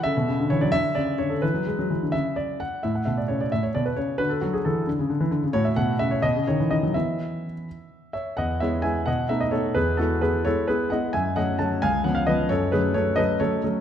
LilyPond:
<<
  \new Staff \with { instrumentName = "Grand piano" } { \time 6/8 \key a \major \tempo 4. = 87 << { e''4 cis''16 d''16 e''8 d''8 cis''16 a'16 | b'4. e''8 d''8 fis''8 | e''16 fis''16 e''16 d''16 cis''16 d''16 e''16 cis''16 d''16 b'16 cis''8 | b'16 a'16 fis'16 gis'16 a'8 r4. |
\key e \major cis''16 e''16 fis''8 e''16 cis''16 dis''8 cis''8 dis''8 | e''2~ e''8 <cis'' e''>8 | <dis'' fis''>8 <cis'' e''>8 <e'' gis''>8 <dis'' fis''>8 e''16 dis''16 <a' cis''>8 | <gis' b'>8 <fis' a'>8 <gis' b'>8 <a' cis''>8 <gis' b'>8 <dis'' fis''>8 |
<e'' gis''>8 <dis'' fis''>8 <fis'' a''>8 <eis'' gis''>8 fis''16 eis''16 <b' dis''>8 | <a' cis''>8 <gis' b'>8 <a' cis''>8 <b' dis''>8 <a' cis''>8 r8 | } \\ { a'4. r4. | e'2. | e'2. | fis'2. |
fis'4. r4. | r2. | r2. | r2. |
r2. | r2. | } >> }
  \new Staff \with { instrumentName = "Grand piano" } { \clef bass \time 6/8 \key a \major cis16 b,16 cis16 d16 e16 fis16 d8 cis8 d8 | e16 fis16 gis16 fis16 e16 d16 cis4. | a,8 b,8 cis8 a,8 b,8 cis8 | d8 fis8 e8 d16 cis16 d16 e16 d16 cis16 |
\key e \major a,8 b,8 cis8 b,16 cis16 dis16 e16 dis16 fis16 | <e b e'>4. r4. | e,8 <gis b e'>8 <gis b e'>8 b,8 <a b dis'>8 <a b dis'>8 | e,8 <gis b e'>8 <gis b e'>8 <gis b e'>8 <gis b e'>8 <gis b e'>8 |
fis,8 <fis a cis'>8 <fis a cis'>8 cis,8 <eis b cis'>8 <eis b cis'>8 | fis,8 <fis a cis'>8 <fis a cis'>8 <fis a cis'>8 <fis a cis'>8 <fis a cis'>8 | }
>>